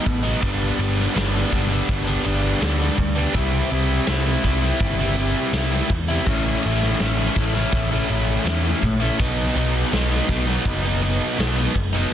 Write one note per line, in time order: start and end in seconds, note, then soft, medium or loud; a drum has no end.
0.00 0.24 B2 loud
0.05 0.32 A1 loud
0.05 muted overdriven electric guitar stroke medium
0.05 kick medium
0.05 ride medium
0.23 0.41 F#3 medium
0.23 0.40 B3 medium
0.23 0.40 D#4 medium
0.40 0.68 G1 loud
0.40 1.13 G2 loud
0.40 0.77 D3 loud
0.40 0.78 G3 loud
0.40 0.79 B3 loud
0.40 0.79 D4 loud
0.40 kick loud
0.40 ride loud
0.78 1.05 G1 medium
0.78 1.13 D3 medium
0.78 1.15 G3 medium
0.78 1.14 B3 medium
0.78 1.15 D4 medium
0.78 ride medium
1.00 snare soft
1.14 1.42 G1 medium
1.14 1.70 G2 loud
1.14 1.50 D3 loud
1.14 1.35 G3 loud
1.14 1.33 B3 loud
1.14 1.31 D4 loud
1.14 snare loud
1.14 ride loud
1.33 1.52 G3 medium
1.33 1.51 B3 medium
1.33 1.53 D4 medium
1.51 1.78 G1 medium
1.51 2.07 D3 medium
1.51 1.71 G3 medium
1.51 1.70 B3 medium
1.51 1.69 D4 medium
1.51 kick medium
1.51 ride medium
1.70 2.06 G3 medium
1.70 2.05 B3 medium
1.70 2.04 D4 medium
1.89 2.15 G1 medium
1.89 kick loud
1.89 ride loud
2.05 2.24 G3 medium
2.05 2.25 B3 medium
2.05 2.25 D4 medium
2.25 2.51 G1 medium
2.25 2.59 D3 medium
2.25 2.60 G3 medium
2.25 2.61 B3 medium
2.25 2.62 D4 loud
2.25 ride medium
2.61 2.88 D2 medium
2.61 3.16 G2 medium
2.61 2.98 D3 medium
2.61 2.80 G3 loud
2.61 2.79 B3 loud
2.61 2.78 D4 loud
2.61 snare loud
2.61 ride loud
2.79 2.98 G3 medium
2.79 2.98 B3 medium
2.79 2.98 D4 medium
2.97 3.24 D2 medium
2.97 muted overdriven electric guitar stroke soft
2.97 kick medium
2.97 ride medium
3.16 3.33 G3 medium
3.16 3.33 B3 medium
3.16 3.32 D4 medium
3.33 3.60 C2 medium
3.33 3.69 C3 loud
3.33 3.70 G3 loud
3.33 3.70 C4 loud
3.33 3.72 E4 loud
3.33 kick loud
3.33 ride loud
3.70 3.97 C2 medium
3.70 4.06 C3 medium
3.70 4.06 G3 medium
3.70 4.07 C4 medium
3.70 4.08 E4 medium
3.70 ride medium
4.07 4.34 C2 medium
4.07 4.42 C3 medium
4.07 4.26 G3 loud
4.07 4.25 C4 loud
4.07 4.24 E4 loud
4.07 snare loud
4.07 ride loud
4.25 4.42 G3 medium
4.25 4.43 C4 medium
4.25 4.44 E4 medium
4.43 4.70 C2 medium
4.43 4.99 C3 medium
4.43 4.62 G3 medium
4.43 4.62 C4 medium
4.43 4.60 E4 medium
4.43 kick medium
4.43 ride medium
4.61 4.99 G3 medium
4.61 4.98 C4 medium
4.61 4.98 E4 medium
4.61 snare soft
4.79 5.32 G1 medium
4.79 kick loud
4.79 ride loud
4.99 5.17 G3 medium
4.99 5.18 C4 medium
4.99 5.18 E4 medium
5.16 5.53 C3 medium
5.16 5.53 G3 medium
5.16 5.54 C4 medium
5.16 5.55 E4 medium
5.16 ride medium
5.53 5.79 C2 medium
5.53 5.89 C3 loud
5.53 5.73 G3 loud
5.53 5.72 C4 loud
5.53 5.71 E4 loud
5.53 snare loud
5.53 ride loud
5.72 5.89 G3 medium
5.72 5.90 C4 medium
5.72 5.90 E4 medium
5.90 6.16 E2 medium
5.90 muted overdriven electric guitar stroke medium
5.90 kick medium
5.90 ride medium
6.08 6.26 G3 medium
6.08 6.26 C4 medium
6.08 6.25 E4 medium
6.26 6.53 A1 loud
6.26 6.99 A2 medium
6.26 6.63 E3 loud
6.26 6.64 A3 loud
6.26 6.65 C#4 loud
6.26 6.65 E4 loud
6.26 kick loud
6.26 crash loud
6.63 6.91 A1 medium
6.63 7.00 E3 medium
6.63 7.00 A3 medium
6.63 7.01 C#4 medium
6.63 7.01 E4 medium
6.63 ride medium
6.83 snare soft
7.00 7.26 A1 medium
7.00 7.55 A2 medium
7.00 7.35 E3 loud
7.00 7.18 A3 loud
7.00 7.17 C#4 loud
7.00 7.16 E4 loud
7.00 snare loud
7.00 ride loud
7.18 7.36 A3 medium
7.18 7.37 C#4 medium
7.18 7.38 E4 medium
7.36 7.63 A1 medium
7.36 7.92 E3 medium
7.36 7.55 A3 medium
7.36 7.54 C#4 medium
7.36 7.53 E4 medium
7.36 kick medium
7.36 ride medium
7.54 7.92 A3 medium
7.54 7.91 C#4 medium
7.54 7.90 E4 medium
7.54 snare soft
7.72 7.99 A1 medium
7.72 kick loud
7.72 ride loud
7.91 8.08 A3 medium
7.91 8.09 C#4 medium
7.91 8.10 E4 medium
8.09 8.36 A1 medium
8.09 8.45 E3 medium
8.09 8.46 A3 medium
8.09 8.46 C#4 medium
8.09 8.46 E4 medium
8.09 ride medium
8.45 8.72 E2 medium
8.45 9.01 A2 loud
8.45 8.83 E3 loud
8.45 8.65 A3 medium
8.45 8.64 C#4 loud
8.45 8.62 E4 loud
8.45 snare loud
8.45 ride loud
8.63 8.83 A3 medium
8.63 8.83 C#4 medium
8.63 8.83 E4 medium
8.82 9.08 A#1 medium
8.82 muted overdriven electric guitar stroke medium
8.82 kick medium
8.82 ride medium
9.00 9.18 A3 medium
9.00 9.17 C#4 medium
9.00 9.17 E4 medium
9.18 9.46 B1 loud
9.18 9.54 B2 medium
9.18 9.55 F#3 loud
9.18 9.56 B3 loud
9.18 9.56 D#4 loud
9.18 kick loud
9.18 ride loud
9.55 9.81 B1 medium
9.55 9.91 B2 medium
9.55 9.92 F#3 medium
9.55 9.93 B3 medium
9.55 9.93 D#4 medium
9.55 ride medium
9.92 10.18 B1 medium
9.92 10.26 B2 loud
9.92 10.11 F#3 loud
9.92 10.11 B3 loud
9.92 10.09 D#4 loud
9.92 snare loud
9.92 ride loud
10.10 10.28 F#3 medium
10.10 10.29 B3 medium
10.10 10.29 D#4 medium
10.27 10.55 B1 loud
10.27 10.83 B2 medium
10.27 10.46 F#3 medium
10.27 10.47 B3 medium
10.27 10.45 D#4 medium
10.27 kick medium
10.27 ride medium
10.46 10.83 F#3 medium
10.46 10.83 B3 medium
10.46 10.81 D#4 medium
10.46 snare soft
10.65 11.17 F#1 loud
10.65 kick loud
10.65 ride loud
10.82 11.00 F#3 medium
10.82 11.02 B3 medium
10.82 11.02 D#4 medium
11.01 11.37 B2 medium
11.01 11.37 F#3 medium
11.01 11.39 B3 medium
11.01 11.39 D#4 medium
11.01 ride medium
11.38 11.65 B1 medium
11.38 11.74 B2 loud
11.38 11.58 F#3 loud
11.38 11.57 B3 loud
11.38 11.55 D#4 loud
11.38 snare loud
11.38 ride loud
11.56 11.74 F#3 medium
11.56 11.75 B3 medium
11.56 11.74 D#4 medium
11.75 12.01 F#1 medium
11.75 muted overdriven electric guitar stroke medium
11.75 kick medium
11.75 ride medium
11.93 12.10 F#3 medium
11.93 12.13 B3 medium
11.93 12.09 D#4 medium